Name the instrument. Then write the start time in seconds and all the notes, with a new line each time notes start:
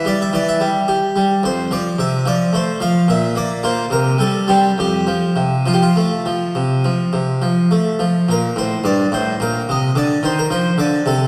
harpsichord
0.05 G3 D5
0.22 E5
0.33 E3 D5
0.49 E5
0.60 G3
0.88 G4
1.16 G3
1.43 F2 C5
1.71 F3 D5
1.99 C3 E5
2.26 F3 D5
2.53 A3 C5
2.80 F3 F5
3.08 A#2 E5
3.36 A#3 D5
3.63 A#3 F4 C5
3.90 C3 A#4
4.18 G3 A4
4.48 G3 C4 G4
4.78 F2 G4
5.07 F3
5.36 C3
5.66 F3 F4
5.74 G4
5.82 F4
5.96 A3
6.26 F3
6.55 C3
6.84 F3
7.13 C3
7.42 F3
7.71 A3
7.99 F3
8.29 A#2 A#4
8.56 A2 C5
8.84 G2 D5
9.12 A2 C5
9.40 A#2 A#4
9.69 C3 D#5
9.95 D3 D5
10.23 D#3 C5
10.39 A#4
10.51 F3 C5
10.78 D3 D5
11.06 C3 A4